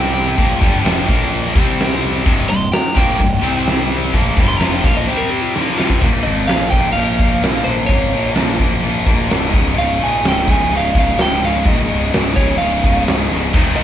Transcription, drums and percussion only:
0.15 open hi-hat medium
0.38 kick loud
0.38 open hi-hat medium
0.62 kick loud
0.62 open hi-hat medium
0.85 snare loud
0.85 open hi-hat medium
1.09 kick loud
1.09 open hi-hat medium
1.32 open hi-hat medium
1.56 kick loud
1.56 open hi-hat medium
1.80 snare loud
1.80 open hi-hat medium
2.03 open hi-hat medium
2.26 kick loud
2.26 open hi-hat medium
2.50 open hi-hat medium
2.72 snare loud
2.72 open hi-hat medium
2.97 kick loud
2.97 snare soft
2.97 open hi-hat medium
3.20 kick medium
3.20 open hi-hat medium
3.44 open hi-hat medium
3.67 snare loud
3.67 open hi-hat medium
3.91 open hi-hat medium
4.14 kick loud
4.14 open hi-hat medium
4.36 kick loud
4.36 open hi-hat medium
4.60 snare loud
4.60 open hi-hat medium
4.84 kick loud
4.84 open hi-hat medium
5.56 snare medium
5.79 snare medium
5.90 kick medium
6.02 kick loud
6.02 crash loud
6.25 open hi-hat medium
6.48 snare loud
6.48 open hi-hat medium
6.72 kick medium
6.72 open hi-hat medium
6.96 open hi-hat medium
7.19 kick loud
7.19 open hi-hat medium
7.43 snare loud
7.43 open hi-hat medium
7.66 open hi-hat medium
7.87 kick loud
7.87 open hi-hat medium
8.13 open hi-hat medium
8.35 snare loud
8.35 open hi-hat medium
8.59 kick medium
8.59 open hi-hat medium
8.83 open hi-hat medium
9.07 kick loud
9.07 open hi-hat medium
9.30 snare loud
9.30 open hi-hat medium
9.53 kick loud
9.53 open hi-hat medium
9.77 open hi-hat medium
10.01 open hi-hat medium
10.24 snare loud
10.24 open hi-hat medium
10.48 kick loud
10.48 open hi-hat medium
10.71 open hi-hat medium
10.95 kick loud
10.95 open hi-hat medium
11.18 snare loud
11.18 open hi-hat medium
11.42 open hi-hat medium
11.65 kick loud
11.65 open hi-hat medium
11.90 open hi-hat medium
12.13 snare loud
12.13 open hi-hat loud
12.37 kick medium
12.37 open hi-hat medium
12.61 open hi-hat medium
12.84 kick loud
12.84 open hi-hat medium
13.07 snare loud
13.07 open hi-hat medium
13.30 open hi-hat medium
13.53 kick loud
13.53 crash loud
13.77 open hi-hat medium

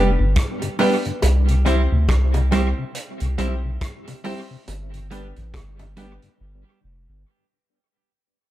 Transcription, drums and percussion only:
0.36 kick loud
0.36 cross-stick loud
0.36 closed hi-hat loud
0.62 closed hi-hat medium
0.62 high bongo soft
0.79 open hi-hat medium
0.79 high bongo medium
0.79 low bongo medium
1.05 closed hi-hat soft
1.22 closed hi-hat medium
1.22 high bongo medium
1.48 closed hi-hat medium
1.66 closed hi-hat medium
2.09 kick loud
2.09 cross-stick medium
2.09 closed hi-hat medium
2.09 high bongo medium
2.34 closed hi-hat soft
2.34 high bongo medium
2.52 cross-stick medium
2.52 closed hi-hat medium
2.52 high bongo medium
2.52 low bongo medium
2.95 closed hi-hat medium
3.20 closed hi-hat medium
3.38 closed hi-hat medium
3.81 kick loud
3.81 cross-stick loud
3.81 closed hi-hat loud
4.07 closed hi-hat medium
4.07 high bongo medium
4.24 open hi-hat medium
4.24 high bongo medium
4.24 low bongo medium
4.68 closed hi-hat medium
4.68 high bongo medium
4.94 closed hi-hat medium
5.11 closed hi-hat medium
5.36 closed hi-hat soft
5.54 kick loud
5.54 cross-stick medium
5.54 closed hi-hat medium
5.54 high bongo medium
5.79 closed hi-hat soft
5.79 high bongo medium
5.97 closed hi-hat medium
5.97 high bongo medium
5.97 low bongo medium
6.22 closed hi-hat soft

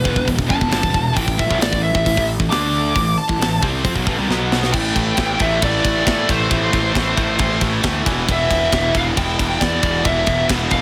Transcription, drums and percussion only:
0.05 kick medium
0.16 kick loud
0.28 kick medium
0.28 open hi-hat medium
0.39 kick medium
0.50 kick medium
0.61 kick medium
0.72 snare loud
0.72 open hi-hat medium
0.83 kick medium
0.94 kick medium
1.16 kick loud
1.16 open hi-hat medium
1.28 kick medium
1.39 kick medium
1.51 kick medium
1.61 snare loud
1.61 open hi-hat medium
1.73 kick medium
1.95 kick loud
2.06 kick medium
2.06 open hi-hat medium
2.17 kick medium
2.40 kick medium
2.51 snare loud
2.51 open hi-hat medium
2.96 kick medium
2.96 open hi-hat medium
3.29 kick medium
3.41 snare loud
3.41 open hi-hat medium
3.63 kick medium
3.85 kick loud
3.85 open hi-hat medium
3.96 kick medium
4.07 kick medium
4.31 snare medium
4.52 snare medium
4.63 snare medium
4.73 kick loud
4.73 crash loud
4.96 kick medium
4.96 ride medium
5.17 kick loud
5.17 snare loud
5.17 ride loud
5.40 kick medium
5.40 ride medium
5.62 kick loud
5.62 ride loud
5.85 kick medium
5.85 ride medium
6.07 kick loud
6.07 snare loud
6.07 ride loud
6.29 kick loud
6.29 ride medium
6.51 kick loud
6.51 ride loud
6.73 kick medium
6.73 ride medium
6.95 kick loud
6.95 snare loud
6.95 ride loud
7.17 kick medium
7.17 ride medium
7.39 kick loud
7.39 ride loud
7.61 kick medium
7.61 ride medium
7.83 kick loud
7.83 snare loud
7.83 ride loud
8.06 kick loud
8.06 ride medium
8.29 kick loud
8.29 ride loud
8.51 kick medium
8.51 ride medium
8.72 kick loud
8.72 snare loud
8.72 ride loud
8.95 kick medium
8.95 ride medium
9.17 kick loud
9.17 ride loud
9.39 kick loud
9.39 ride medium
9.61 kick loud
9.61 snare loud
9.61 ride loud
9.83 kick loud
9.83 ride medium
10.05 kick loud
10.05 ride loud
10.27 kick medium
10.27 ride medium
10.49 kick loud
10.49 snare loud
10.49 ride loud
10.71 kick medium
10.71 ride medium

